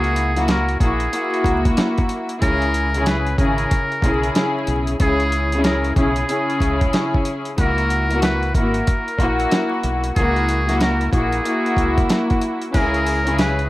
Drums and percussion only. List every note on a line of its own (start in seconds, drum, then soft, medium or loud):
0.04 closed hi-hat soft
0.16 closed hi-hat medium
0.37 snare soft
0.37 closed hi-hat medium
0.48 snare loud
0.48 closed hi-hat medium
0.69 closed hi-hat soft
0.80 kick loud
0.80 closed hi-hat medium
1.00 closed hi-hat medium
1.13 closed hi-hat medium
1.34 closed hi-hat soft
1.44 kick medium
1.44 closed hi-hat medium
1.65 kick medium
1.65 closed hi-hat medium
1.77 snare loud
1.77 closed hi-hat medium
1.98 kick medium
1.98 closed hi-hat soft
2.09 closed hi-hat medium
2.29 closed hi-hat medium
2.42 kick loud
2.42 closed hi-hat medium
2.62 closed hi-hat soft
2.74 closed hi-hat medium
2.94 closed hi-hat medium
3.06 snare loud
3.06 closed hi-hat medium
3.27 closed hi-hat soft
3.38 kick loud
3.38 closed hi-hat medium
3.58 closed hi-hat medium
3.71 kick loud
3.71 closed hi-hat medium
3.92 closed hi-hat soft
4.02 kick medium
4.02 closed hi-hat medium
4.23 closed hi-hat medium
4.35 snare loud
4.35 closed hi-hat medium
4.67 closed hi-hat medium
4.87 closed hi-hat medium
5.00 kick loud
5.00 closed hi-hat medium
5.20 closed hi-hat soft
5.32 closed hi-hat medium
5.52 closed hi-hat medium
5.64 snare loud
5.64 closed hi-hat medium
5.84 closed hi-hat soft
5.96 kick loud
5.96 closed hi-hat medium
6.16 closed hi-hat medium
6.29 closed hi-hat medium
6.50 closed hi-hat soft
6.60 kick medium
6.60 closed hi-hat medium
6.81 kick medium
6.81 closed hi-hat medium
6.93 snare loud
6.93 closed hi-hat medium
7.14 kick medium
7.25 closed hi-hat medium
7.45 closed hi-hat medium
7.58 kick loud
7.58 closed hi-hat medium
7.78 closed hi-hat soft
7.90 closed hi-hat medium
8.10 closed hi-hat medium
8.22 snare loud
8.22 closed hi-hat medium
8.43 closed hi-hat soft
8.55 kick loud
8.55 closed hi-hat medium
8.74 closed hi-hat medium
8.87 kick loud
8.87 closed hi-hat medium
9.08 closed hi-hat soft
9.19 kick medium
9.19 closed hi-hat medium
9.40 closed hi-hat medium
9.51 snare loud
9.51 closed hi-hat medium
9.83 closed hi-hat medium
10.04 closed hi-hat medium
10.16 kick loud
10.16 closed hi-hat medium
10.36 closed hi-hat soft
10.49 closed hi-hat medium
10.69 snare soft
10.69 closed hi-hat medium
10.81 snare loud
10.81 closed hi-hat medium
11.01 closed hi-hat soft
11.13 kick loud
11.13 closed hi-hat medium
11.32 closed hi-hat medium
11.45 closed hi-hat medium
11.66 closed hi-hat soft
11.77 kick medium
11.77 closed hi-hat medium
11.98 kick medium
11.98 closed hi-hat medium
12.09 snare loud
12.09 closed hi-hat medium
12.30 kick medium
12.30 closed hi-hat soft
12.41 closed hi-hat medium
12.62 closed hi-hat medium
12.74 kick loud
12.74 closed hi-hat medium
12.74 sleigh bells soft
12.94 closed hi-hat soft
13.06 closed hi-hat medium
13.06 sleigh bells medium
13.27 closed hi-hat medium
13.38 snare loud
13.38 closed hi-hat medium
13.38 sleigh bells soft
13.59 closed hi-hat soft